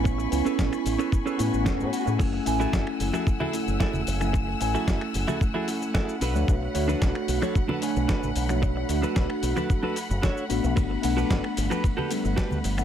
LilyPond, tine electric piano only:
\new Staff \with { instrumentName = "Tine electric piano" } { \time 4/4 \key fis \minor \tempo 4 = 112 <b cis' e' gis''>8 <b cis' e' gis''>2 <a b cis' e'>4~ <a b cis' e'>16 <a cis' e' gis'>16~ | <a cis' e' gis'>8 <a cis' e' gis''>2 <a cis' e'>4~ <a cis' e'>16 <a cis' e' gis''>16~ | <a cis' e' gis''>8 <a cis' e' gis''>2 <a cis' e'>4 r16 <a d' fis' cis''>16~ | <a d' fis' cis''>8 <a d' fis' cis''>2 <a d' cis'' gis''>4~ <a d' cis'' gis''>16 <a d' fis' cis''>16~ |
<a d' fis' cis''>8 <a d' fis'>2 r4 <a b d' fis'>8~ | <a b d' fis'>8 <a b d' fis''>2 <g a b d'>4~ <g a b d'>16 <a b d' fis''>16 | }